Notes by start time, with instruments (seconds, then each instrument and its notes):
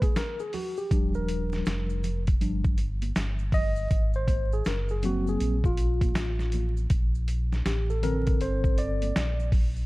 0.02 tine electric piano G#4, kick, closed hi-hat, high conga, maracas
0.16 tine electric piano A#4, snare, closed hi-hat, maracas
0.39 tine electric piano G#4, maracas
0.53 tine electric piano F#4, open hi-hat, low conga, maracas
0.77 tine electric piano G4, maracas
0.91 sub bass D#1, tine electric piano F3 G3 D4, kick, closed hi-hat, maracas
1.14 tine electric piano A#4, maracas
1.29 closed hi-hat, maracas
1.52 snare, maracas
1.66 sub bass F1, snare, closed hi-hat, maracas
1.90 maracas
2.03 closed hi-hat, low conga, maracas
2.27 kick, closed hi-hat, maracas
2.41 sub bass G1, tine electric piano F3 G3 D4, closed hi-hat, maracas
2.64 kick, maracas
2.78 closed hi-hat, maracas
3.02 closed hi-hat, high conga, maracas
3.15 sub bass G1, snare, closed hi-hat, maracas
3.39 maracas
3.52 tine electric piano D#5, kick, open hi-hat, low conga, maracas
3.76 maracas
3.90 sub bass G#1, kick, closed hi-hat, maracas
4.13 tine electric piano C5, maracas
4.28 kick, closed hi-hat, high conga, maracas
4.52 tine electric piano G#4, maracas
4.65 sub bass F#1, tine electric piano A#4, snare, closed hi-hat, maracas
4.89 tine electric piano G#4, maracas
5.03 tine electric piano F#3 A#3 C4 F#4, closed hi-hat, low conga, maracas
5.27 tine electric piano G#4, high conga, maracas
5.40 sub bass A#1, closed hi-hat, maracas
5.64 tine electric piano F4, kick, maracas
5.77 closed hi-hat, maracas
6.01 kick, closed hi-hat, high conga, maracas
6.15 sub bass A1, snare, closed hi-hat, maracas
6.39 snare, maracas
6.52 closed hi-hat, high conga, low conga, maracas
6.77 maracas
6.90 sub bass A#1, kick, closed hi-hat, maracas
7.15 maracas
7.28 closed hi-hat, maracas
7.52 snare, maracas
7.66 sub bass A1, tine electric piano G4, snare, closed hi-hat, maracas
7.90 tine electric piano A4, maracas
8.02 tine electric piano D3 C4 A4 A#4, closed hi-hat, low conga, maracas
8.27 kick, closed hi-hat, maracas
8.41 sub bass G1, tine electric piano C5, closed hi-hat, maracas
8.64 kick, maracas
8.78 tine electric piano D5, closed hi-hat, maracas
9.02 closed hi-hat, high conga, maracas
9.16 sub bass A#1, snare, closed hi-hat, maracas
9.40 maracas
9.52 kick, open hi-hat, low conga, maracas
9.76 maracas